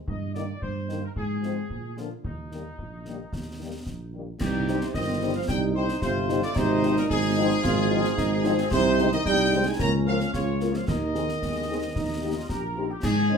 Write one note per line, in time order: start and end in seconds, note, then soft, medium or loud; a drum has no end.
0.07 0.53 G2 medium
0.07 0.33 D#5 medium
0.07 concert bass drum medium
0.35 0.45 D#3 soft
0.35 0.44 A#3 soft
0.35 0.45 D#4 soft
0.35 0.60 D5 medium
0.35 snare soft
0.62 1.07 G2 medium
0.62 1.00 C5 medium
0.62 concert bass drum medium
0.89 0.99 D#3 medium
0.89 0.99 A#3 soft
0.89 0.99 D#4 soft
0.89 snare soft
1.04 1.10 A#4 medium
1.16 1.61 G#2 medium
1.16 1.93 G#4 medium
1.16 concert bass drum medium
1.43 1.52 F3 soft
1.43 1.53 G#3 soft
1.43 1.53 C4 soft
1.43 snare soft
1.70 2.15 A#2 soft
1.70 concert bass drum medium
1.97 2.07 D3 soft
1.97 2.07 F3 soft
1.97 2.07 A#3 soft
1.97 2.09 F4 soft
1.97 snare soft
2.24 2.70 D#2 soft
2.24 4.09 D#4 medium
2.24 concert bass drum medium
2.51 2.61 D#3 soft
2.51 2.61 G3 soft
2.51 2.61 A#3 soft
2.51 snare soft
2.78 3.23 A#1 soft
2.78 concert bass drum medium
3.05 3.15 D#3 soft
3.05 3.15 G3 soft
3.05 3.15 A#3 soft
3.05 snare soft
3.33 3.77 D#2 soft
3.33 concert bass drum medium
3.33 snare soft
3.59 3.69 D#3 soft
3.59 3.69 G3 soft
3.59 3.69 A#3 soft
3.86 4.32 A#1 soft
3.86 concert bass drum soft
3.86 snare soft
4.14 4.23 D#3 soft
4.14 4.23 G3 soft
4.14 4.23 A#3 soft
4.40 4.85 C2 medium
4.40 4.78 G2 medium
4.40 4.91 D#4 medium
4.40 4.78 G4 loud
4.40 concert bass drum medium
4.40 snare medium
4.40 crash medium
4.68 4.77 G3 medium
4.68 4.78 C4 medium
4.68 4.78 D#4 medium
4.68 snare medium
4.81 4.96 C3 medium
4.81 4.87 C5 medium
4.81 snare medium
4.94 5.40 G1 medium
4.94 5.35 D#3 medium
4.94 5.45 C4 medium
4.94 5.32 D#5 loud
4.94 concert bass drum medium
4.94 snare medium
5.22 5.31 G3 medium
5.22 5.31 C4 medium
5.22 5.31 D#4 medium
5.35 5.51 F3 medium
5.35 5.42 F5 medium
5.48 5.93 C2 medium
5.48 5.75 G3 medium
5.48 6.02 D#4 medium
5.48 5.60 G5 loud
5.48 concert bass drum medium
5.48 snare medium
5.75 5.87 C3 medium
5.75 5.85 G3 medium
5.75 5.85 C4 medium
5.75 5.85 D#4 medium
5.75 6.00 C5 loud
5.89 snare medium
6.01 6.43 G1 medium
6.01 6.40 C3 loud
6.01 6.56 F4 medium
6.01 6.40 C5 loud
6.01 concert bass drum medium
6.01 snare medium
6.29 6.39 G3 medium
6.29 6.39 C4 medium
6.29 6.39 D#4 medium
6.29 snare medium
6.42 6.49 D3 medium
6.42 6.55 D5 loud
6.42 snare medium
6.55 7.01 G#1 medium
6.55 6.97 C3 loud
6.55 7.60 D#4 loud
6.55 6.97 C5 loud
6.55 concert bass drum medium
6.55 snare medium
6.55 crash soft
6.83 6.92 F3 medium
6.83 6.92 C4 medium
6.83 6.92 D#4 medium
6.83 snare medium
6.96 7.09 A#2 medium
6.96 7.03 A#4 loud
6.96 snare medium
7.10 7.55 G#1 medium
7.10 8.68 G#2 loud
7.10 8.68 G#4 loud
7.10 concert bass drum medium
7.10 snare medium
7.36 7.47 F3 medium
7.36 7.46 C4 medium
7.36 7.46 D#4 medium
7.64 8.09 G#1 loud
7.64 8.14 F4 loud
7.64 concert bass drum medium
7.64 snare medium
7.90 8.00 F3 medium
7.90 8.00 C4 medium
7.90 8.00 D#4 medium
8.05 snare medium
8.18 8.63 G#1 medium
8.18 8.43 D#4 loud
8.18 concert bass drum medium
8.18 snare medium
8.44 8.54 F3 medium
8.44 8.54 C4 medium
8.44 8.72 C4 medium
8.44 8.54 D#4 medium
8.44 snare medium
8.58 snare medium
8.71 9.17 C2 loud
8.71 9.10 C3 loud
8.71 9.24 D#4 loud
8.71 9.09 C5 loud
8.71 concert bass drum loud
8.71 snare medium
8.71 crash soft
8.99 9.08 G#3 medium
8.99 9.09 C4 medium
8.99 9.08 D#4 medium
8.99 snare medium
9.12 9.19 D#3 medium
9.12 9.25 D#5 loud
9.12 snare medium
9.26 9.71 C2 medium
9.26 9.64 G3 loud
9.26 9.76 D#4 loud
9.26 9.63 G5 loud
9.26 concert bass drum medium
9.26 snare medium
9.53 9.62 G#3 medium
9.53 9.63 C4 medium
9.53 9.62 D#4 medium
9.66 9.79 G#3 medium
9.66 9.80 G#5 loud
9.79 10.25 C#2 loud
9.79 9.92 A#3 loud
9.79 10.30 C#4 medium
9.79 9.92 A#5 loud
9.79 concert bass drum medium
9.79 snare medium
10.06 10.19 F3 medium
10.06 10.16 A#3 medium
10.06 10.16 F4 medium
10.06 10.16 A#4 medium
10.06 10.32 F5 loud
10.20 snare medium
10.33 10.79 C#2 medium
10.33 10.72 C#3 medium
10.33 10.84 F4 medium
10.33 10.71 C#5 medium
10.33 concert bass drum medium
10.33 snare medium
10.61 10.71 A#3 medium
10.61 10.71 F4 medium
10.61 10.71 A#4 medium
10.61 snare medium
10.74 10.87 F3 medium
10.74 10.88 F5 medium
10.74 snare medium
10.87 11.33 D#2 medium
10.87 12.46 D#3 medium
10.87 11.28 D#4 medium
10.87 12.45 D#5 loud
10.87 concert bass drum medium
10.87 snare medium
10.87 crash soft
11.15 11.25 C4 medium
11.15 11.25 D#4 medium
11.15 11.25 G#4 medium
11.15 snare medium
11.29 snare medium
11.42 11.87 D#2 medium
11.42 11.79 G#3 medium
11.42 concert bass drum medium
11.42 snare medium
11.69 11.78 C4 medium
11.69 11.79 D#4 medium
11.69 11.79 G#4 medium
11.83 11.89 C4 medium
11.95 12.41 D#2 medium
11.95 12.33 D#4 medium
11.95 concert bass drum medium
11.95 snare medium
12.22 12.32 A#3 medium
12.22 12.32 D#4 medium
12.22 12.32 G4 medium
12.36 12.50 F4 medium
12.49 12.94 A#1 medium
12.49 12.61 G4 medium
12.49 12.87 A#4 medium
12.49 12.87 A#5 medium
12.49 concert bass drum medium
12.49 snare medium
12.77 12.86 A#3 medium
12.77 12.89 C4 medium
12.77 12.86 D#4 medium
12.77 12.86 G4 medium
12.90 13.04 G4 medium
12.90 12.96 G5 medium
13.02 13.38 G#2 loud
13.02 13.38 D#3 medium
13.02 13.38 C4 medium
13.02 13.16 D#4 medium
13.02 13.38 G#4 loud
13.02 13.38 G#5 medium
13.02 concert bass drum medium
13.02 snare medium
13.02 crash medium
13.30 13.38 G#3 medium
13.30 13.38 C4 medium
13.30 13.38 C#4 medium
13.30 13.38 D#4 medium